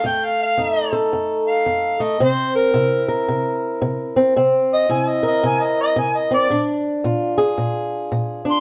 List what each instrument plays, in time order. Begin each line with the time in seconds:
0.04 steel-string acoustic guitar F2 A3, harmonica G5
0.25 harmonica F5
0.43 harmonica F5
0.58 steel-string acoustic guitar F2 D#4
0.93 steel-string acoustic guitar A4
1.13 steel-string acoustic guitar F2
1.48 harmonica F5
1.66 steel-string acoustic guitar F2
2.00 steel-string acoustic guitar A3, harmonica D#5
2.20 steel-string acoustic guitar C3 C4, harmonica C5
2.55 harmonica A#4
2.74 steel-string acoustic guitar C3 E4
3.08 steel-string acoustic guitar A#4
3.28 steel-string acoustic guitar C3
3.82 steel-string acoustic guitar C3
4.16 steel-string acoustic guitar C4
4.36 steel-string acoustic guitar C3 C4
4.73 harmonica D#5
4.89 steel-string acoustic guitar C3 E4, harmonica G#5
5.09 harmonica D#5
5.23 steel-string acoustic guitar A#4, harmonica D#5
5.43 steel-string acoustic guitar C3, harmonica G#5
5.63 harmonica D#5
5.81 harmonica D#5
5.96 steel-string acoustic guitar C3, harmonica G#5
6.17 harmonica D#5
6.31 steel-string acoustic guitar C4, harmonica D5
6.50 steel-string acoustic guitar A#2 D4
7.04 steel-string acoustic guitar A#2 F4
7.38 steel-string acoustic guitar G#4
7.58 steel-string acoustic guitar A#2
8.12 steel-string acoustic guitar A#2
8.45 steel-string acoustic guitar D4
8.50 harmonica C6